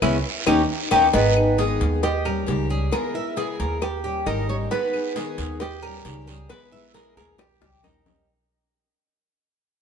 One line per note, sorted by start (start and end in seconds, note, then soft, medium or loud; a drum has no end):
0.02 0.19 C#2 medium
0.02 0.16 G#3 medium
0.02 0.16 B3 loud
0.02 0.17 B3 medium
0.02 0.16 C#4 medium
0.02 0.17 C#4 medium
0.02 0.17 E4 medium
0.02 cowbell loud
0.02 long guiro loud
0.02 claves loud
0.46 0.64 D#2 loud
0.46 0.61 A#3 medium
0.46 0.61 C#4 loud
0.46 0.61 C#4 medium
0.46 0.61 D#4 loud
0.46 0.61 D#4 medium
0.46 0.61 G4 medium
0.46 cowbell loud
0.46 claves loud
0.91 1.08 D#2 medium
0.91 1.06 A#3 loud
0.91 1.05 C#4 loud
0.91 1.06 C#4 medium
0.91 1.05 D#4 medium
0.91 1.06 D#4 loud
0.91 1.06 G4 loud
0.91 cowbell loud
0.91 claves medium
1.13 1.77 G#1 medium
1.13 1.35 D#3 medium
1.13 1.35 G#3 medium
1.13 1.57 B3 medium
1.13 1.35 B3 medium
1.13 1.60 D#4 medium
1.13 1.35 D#4 medium
1.13 1.34 G#4 medium
1.13 cowbell loud
1.36 1.58 B3 soft
1.36 1.58 D#4 soft
1.36 1.57 G#4 medium
1.36 claves medium
1.58 2.02 D#3 medium
1.58 2.02 G#3 medium
1.58 2.03 B3 medium
1.58 2.03 D#4 medium
1.58 2.02 G#4 medium
1.58 2.03 G#4 medium
1.58 cowbell medium
1.81 2.44 D#2 medium
1.81 cowbell medium
2.03 2.92 G4 loud
2.03 2.25 D#5 medium
2.03 muted steel-string acoustic guitar stroke medium
2.03 cowbell loud
2.25 2.46 G3 soft
2.25 2.46 C#4 medium
2.25 2.47 G4 medium
2.25 2.69 A#4 medium
2.25 claves medium
2.46 2.87 C#2 loud
2.46 2.69 D#3 medium
2.46 2.69 G3 medium
2.46 2.69 C#4 medium
2.46 2.68 G4 medium
2.46 cowbell medium
2.69 2.92 G3 soft
2.69 2.92 C#4 medium
2.69 2.91 G4 medium
2.69 3.14 G#4 medium
2.92 3.14 C#3 medium
2.92 3.14 E3 medium
2.92 3.14 G#3 medium
2.92 3.14 B3 medium
2.92 3.13 E4 medium
2.92 3.36 A#4 loud
2.92 cowbell loud
2.92 claves medium
3.14 3.36 G#3 soft
3.14 3.36 B3 soft
3.14 3.36 E4 medium
3.14 3.37 E5 medium
3.36 3.81 C#3 medium
3.36 3.81 E3 medium
3.36 3.81 G#3 medium
3.36 3.81 B3 medium
3.36 3.81 E4 medium
3.36 3.82 G#4 medium
3.36 3.59 G#4 medium
3.36 cowbell medium
3.60 4.23 D#2 loud
3.60 4.03 A#4 medium
3.60 cowbell medium
3.81 4.26 G4 loud
3.81 muted steel-string acoustic guitar stroke medium
3.81 cowbell loud
3.81 claves medium
4.04 4.26 G3 soft
4.04 4.26 C#4 soft
4.04 4.25 G4 medium
4.04 4.26 G4 medium
4.26 4.66 G#1 medium
4.26 4.48 D#3 medium
4.26 4.48 G3 medium
4.26 4.48 C#4 medium
4.26 4.70 D#4 medium
4.26 4.47 G4 medium
4.26 4.47 A#4 loud
4.26 cowbell medium
4.26 claves medium
4.49 4.71 G3 soft
4.49 4.71 C#4 soft
4.49 4.70 G4 medium
4.49 4.55 C#5 loud
4.71 4.93 D#3 medium
4.71 4.93 G#3 medium
4.71 5.14 B3 medium
4.71 4.93 B3 medium
4.71 4.93 D#4 medium
4.71 4.93 G#4 medium
4.71 5.16 B4 loud
4.71 cowbell loud
4.71 long guiro medium
4.94 5.16 B3 soft
4.94 5.16 D#4 medium
4.94 5.15 G#4 medium
4.94 claves medium
5.16 5.60 D#3 medium
5.16 5.60 G#3 medium
5.16 5.60 B3 medium
5.16 5.61 D#4 medium
5.16 5.59 G#4 medium
5.16 5.61 G#4 loud
5.16 5.61 G#4 medium
5.16 cowbell medium
5.16 short guiro medium
5.38 6.01 D#2 loud
5.38 cowbell medium
5.38 short guiro medium
5.60 6.49 G4 loud
5.60 5.82 D#5 medium
5.60 muted steel-string acoustic guitar stroke medium
5.60 cowbell loud
5.60 long guiro medium
5.83 6.04 G3 soft
5.83 6.05 C#4 soft
5.83 6.04 G4 medium
5.83 6.26 A#4 medium
5.83 claves medium
6.05 6.45 C#2 medium
6.05 6.26 D#3 medium
6.05 6.27 G3 medium
6.05 6.27 C#4 medium
6.05 6.26 G4 medium
6.05 cowbell medium
6.05 short guiro medium
6.27 6.49 G3 soft
6.27 6.49 C#4 medium
6.27 6.49 G4 soft
6.27 6.71 G#4 medium
6.27 short guiro medium
6.49 6.71 C#3 medium
6.49 6.71 E3 medium
6.49 6.71 G#3 medium
6.49 6.72 B3 medium
6.49 6.71 E4 medium
6.49 6.91 B4 loud
6.49 cowbell loud
6.49 long guiro medium
6.49 claves medium
6.72 6.94 G#3 soft
6.72 6.94 B3 soft
6.72 6.94 E4 soft
6.72 6.94 E5 medium
6.94 7.38 C#3 medium
6.94 7.38 E3 medium
6.94 7.39 G#3 medium
6.94 7.39 B3 medium
6.94 7.39 E4 medium
6.94 7.16 G#4 medium
6.94 7.17 A#4 loud
6.94 cowbell medium
6.94 short guiro medium
7.17 7.58 D#2 medium
7.17 7.38 G#4 medium
7.17 7.60 A#4 medium
7.17 cowbell medium
7.17 short guiro medium
7.38 7.80 G4 loud
7.38 muted steel-string acoustic guitar stroke medium
7.38 cowbell loud
7.38 high bongo medium
7.38 long guiro medium
7.38 claves medium
7.61 7.82 C#2 medium
7.61 7.82 G3 soft
7.61 7.83 C#4 soft
7.61 7.83 G4 medium
7.61 7.84 G4 medium
7.61 high bongo loud
7.83 8.23 D#2 medium
7.83 8.05 D#3 medium
7.83 8.05 G3 medium
7.83 8.05 C#4 medium
7.83 8.27 D#4 medium
7.83 8.04 G4 medium
7.83 8.25 A#4 medium
7.83 cowbell medium
7.83 low bongo medium
7.83 short guiro medium
7.83 claves medium
8.05 8.28 G3 soft
8.05 8.28 C#4 soft
8.05 8.27 G4 soft
8.05 low bongo loud
8.05 short guiro medium